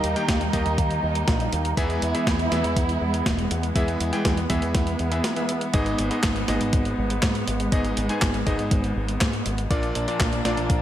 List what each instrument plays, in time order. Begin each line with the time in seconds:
Already playing: electric grand piano D#3 A#3 D#4 G4 D#5, string section G3 A#3 D#4
0.04 picked electric bass D#2, closed hi-hat
0.16 electric grand piano D#3 A#3 D#4 G4 G5, closed hi-hat
0.28 picked electric bass D#2, kick, snare, closed hi-hat
0.41 closed hi-hat
0.53 picked electric bass D#2, electric grand piano D#3 A#3 D#4 G4 D#5, kick, closed hi-hat
0.66 picked electric bass D#2, closed hi-hat
0.78 picked electric bass D#2, kick, closed hi-hat
0.91 closed hi-hat
1.03 picked electric bass D#2
1.15 closed hi-hat
1.28 picked electric bass A#1, kick, snare, closed hi-hat
1.40 closed hi-hat
1.53 picked electric bass D#2, closed hi-hat
1.65 closed hi-hat
1.77 picked electric bass E2, electric grand piano E3 B3 E4 G#4 E5, string section G#3 B3 E4, kick, closed hi-hat
1.90 closed hi-hat
2.02 picked electric bass E2, closed hi-hat
2.14 electric grand piano E3 B3 E4 G#4 E5, closed hi-hat
2.27 picked electric bass E2, kick, snare, closed hi-hat
2.39 closed hi-hat
2.51 picked electric bass E2, electric grand piano E3 B3 E4 G#4 E5, snare, closed hi-hat
2.64 picked electric bass E2, closed hi-hat
2.76 picked electric bass E2, kick, closed hi-hat
2.89 closed hi-hat
3.01 picked electric bass E2
3.14 closed hi-hat
3.26 picked electric bass E1, kick, snare, closed hi-hat
3.39 closed hi-hat
3.51 picked electric bass E2, closed hi-hat
3.63 closed hi-hat
3.75 picked electric bass E2, electric grand piano E3 B3 E4 G#4 E5, kick, closed hi-hat
3.88 closed hi-hat
4.00 picked electric bass E2, closed hi-hat
4.13 electric grand piano E3 B3 E4 G#4 G5, closed hi-hat
4.25 picked electric bass E2, kick, snare, closed hi-hat
4.37 closed hi-hat
4.50 picked electric bass E2, electric grand piano E3 B3 E4 G#4 E5, kick, closed hi-hat
4.62 picked electric bass E2, closed hi-hat
4.75 picked electric bass E2, kick, snare, closed hi-hat
4.87 closed hi-hat
4.99 picked electric bass E2, closed hi-hat
5.12 electric grand piano E3 B3 E4 G#4 E5, closed hi-hat
5.24 snare, closed hi-hat
5.36 electric grand piano E3 B3 E4 G#4 E5, closed hi-hat
5.49 closed hi-hat
5.61 closed hi-hat
5.74 picked electric bass G#1, electric grand piano G#2 B3 D#4 G#4 D#5, string section G#3, kick, closed hi-hat
5.86 closed hi-hat
5.99 picked electric bass G#1, closed hi-hat
6.11 electric grand piano G#2 B3 D#4 G#4 D#5, closed hi-hat
6.23 picked electric bass G#1, kick, snare, clap, closed hi-hat
6.36 closed hi-hat
6.48 picked electric bass G#1, electric grand piano G#2 B3 D#4 G#4 D#5, snare, closed hi-hat
6.61 picked electric bass G#1, closed hi-hat
6.73 picked electric bass G#1, kick, closed hi-hat
6.85 closed hi-hat
6.98 picked electric bass G#1
7.10 closed hi-hat
7.22 picked electric bass G#2, kick, snare, clap, closed hi-hat
7.35 closed hi-hat
7.48 picked electric bass G#1, closed hi-hat
7.60 closed hi-hat
7.72 picked electric bass G#1, electric grand piano G#2 B3 D#4 G#4 D#5, kick, closed hi-hat
7.85 closed hi-hat
7.97 picked electric bass G#1, closed hi-hat
8.09 electric grand piano G#2 B3 D#4 G#4 G#5, closed hi-hat
8.22 picked electric bass G#1, kick, snare, clap, closed hi-hat
8.34 closed hi-hat
8.47 picked electric bass G#1, electric grand piano G#2 B3 D#4 G#4 D#5, kick, closed hi-hat
8.59 picked electric bass G#1, closed hi-hat
8.71 picked electric bass G#1, kick, closed hi-hat
8.84 closed hi-hat
8.96 picked electric bass G#1
9.09 closed hi-hat
9.21 picked electric bass G#2, kick, snare, clap, closed hi-hat
9.33 closed hi-hat
9.46 picked electric bass G#1, closed hi-hat
9.58 closed hi-hat
9.70 picked electric bass A#1, electric grand piano A#2 A#3 D4 F4 D5, string section F3 A#3 D4, kick, closed hi-hat
9.83 closed hi-hat
9.95 picked electric bass A#1, closed hi-hat
10.08 electric grand piano A#2 A#3 D4 F4 D5, closed hi-hat
10.20 picked electric bass A#1, kick, snare, clap, closed hi-hat
10.33 closed hi-hat
10.45 picked electric bass A#1, electric grand piano A#2 A#3 D4 F4 D5, snare, closed hi-hat
10.57 picked electric bass A#1, closed hi-hat
10.70 picked electric bass A#1, kick, closed hi-hat